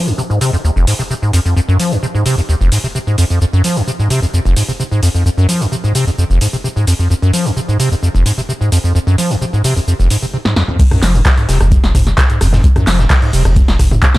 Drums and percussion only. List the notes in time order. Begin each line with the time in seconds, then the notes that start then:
0.07 shaker
0.19 shaker
0.31 shaker
0.41 open hi-hat, shaker
0.54 shaker
0.65 shaker
0.77 shaker
0.87 open hi-hat, shaker
1.00 shaker
1.11 shaker
1.23 shaker
1.33 open hi-hat, shaker
1.46 shaker
1.57 shaker
1.69 shaker
1.80 open hi-hat, shaker
1.92 shaker
2.03 shaker
2.15 shaker
2.26 open hi-hat, shaker
2.38 shaker
2.49 shaker
2.61 shaker
2.72 open hi-hat, shaker
2.84 shaker
2.96 shaker
3.07 shaker
3.18 open hi-hat, shaker
3.30 shaker
3.42 shaker
3.54 shaker
3.64 open hi-hat, shaker
3.77 shaker
3.88 shaker
4.00 shaker
4.10 open hi-hat, shaker
4.23 shaker
4.34 shaker
4.46 shaker
4.56 open hi-hat, shaker
4.69 shaker
4.80 shaker
4.92 shaker
5.03 open hi-hat, shaker
5.15 shaker
5.26 shaker
5.38 shaker
5.49 open hi-hat, shaker
5.61 shaker
5.73 shaker
5.84 shaker
5.95 open hi-hat, shaker
6.07 shaker
6.19 shaker
6.31 shaker
6.41 open hi-hat, shaker
6.54 shaker
6.65 shaker
6.77 shaker
6.87 open hi-hat, shaker
7.00 shaker
7.11 shaker
7.23 shaker
7.33 open hi-hat, shaker
7.46 shaker
7.57 shaker
7.69 shaker
7.80 open hi-hat, shaker
7.92 shaker
8.03 shaker
8.15 shaker
8.26 open hi-hat, shaker
8.38 shaker
8.50 shaker
8.62 shaker
8.72 open hi-hat, shaker
8.85 shaker
8.96 shaker
9.08 shaker
9.18 open hi-hat, shaker
9.31 shaker
9.42 shaker
9.54 shaker
9.64 open hi-hat, shaker
9.77 shaker
9.88 shaker
10.00 shaker
10.10 open hi-hat, shaker
10.23 shaker
10.45 snare
10.56 snare
10.68 mid tom
10.79 kick, closed hi-hat, crash, shaker
10.91 cross-stick, closed hi-hat, mid tom, shaker
11.03 snare, clap, open hi-hat, shaker
11.15 shaker
11.25 kick, cross-stick, snare, clap, closed hi-hat, shaker
11.38 closed hi-hat, shaker
11.49 snare, open hi-hat, shaker
11.61 cross-stick, closed hi-hat, shaker
11.72 kick, closed hi-hat, shaker
11.84 snare, closed hi-hat, shaker
11.95 kick, cross-stick, open hi-hat, mid tom, shaker
12.07 snare, closed hi-hat, shaker
12.17 kick, snare, clap, closed hi-hat, shaker
12.30 closed hi-hat, shaker
12.41 cross-stick, open hi-hat, shaker
12.53 snare, mid tom, shaker
12.64 kick, closed hi-hat, shaker
12.76 cross-stick, closed hi-hat, mid tom, shaker
12.87 snare, clap, open hi-hat, shaker
12.99 snare, closed hi-hat, shaker
13.10 kick, cross-stick, snare, clap, closed hi-hat, open hi-hat, shaker
13.22 closed hi-hat, shaker
13.33 open hi-hat, shaker
13.45 cross-stick, closed hi-hat, shaker
13.56 kick, closed hi-hat, shaker
13.68 snare, closed hi-hat, shaker
13.79 kick, cross-stick, open hi-hat, shaker
13.91 closed hi-hat, mid tom, shaker
14.02 kick, clap, closed hi-hat, shaker
14.15 snare, closed hi-hat, mid tom, shaker